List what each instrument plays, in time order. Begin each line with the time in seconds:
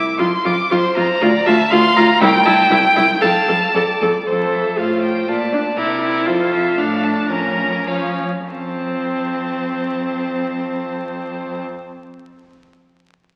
Already playing: violin D6
0.18 cello F2, viola F4, violin C6
0.45 cello F2, viola F4, violin D6
0.70 cello F2, viola F4, violin C5 C6
0.96 cello F2, viola F4, violin A#5
1.21 cello D2, viola F4, violin D5
1.46 cello D2, viola F4, violin E5 A5
1.71 cello D2, viola F4, violin F5 C6
1.96 cello D2, viola F4, violin A#5
2.21 cello C2, viola E4, violin G5
2.45 cello C2, viola E4, violin A5
2.71 cello C2, viola E4, violin G5
2.96 cello C2, viola E4
3.21 cello F2, viola A4, violin F5 A5
3.48 cello F2, viola A4
3.74 cello F2, viola A4, violin D5
4.01 cello F2, viola A4
4.27 cello F2, viola A4, violin C5
4.53 violin E5
4.78 cello A2, viola F4, violin C5 F5
5.02 violin G5
5.28 cello A#2, viola F4, violin D5 A5
5.53 viola D4
5.77 cello C3, viola E4, violin A#4 D5
6.02 viola E4
6.26 cello F2, viola F4, violin A4 C5
6.53 violin E5
6.77 cello A2, viola D4, violin A4 F5
7.04 violin A5
7.30 cello F2, viola C#4, violin A#4 A#5
7.87 cello F3, viola C#4, violin C#5 F5
8.49 cello F2, viola C4, violin C5 A5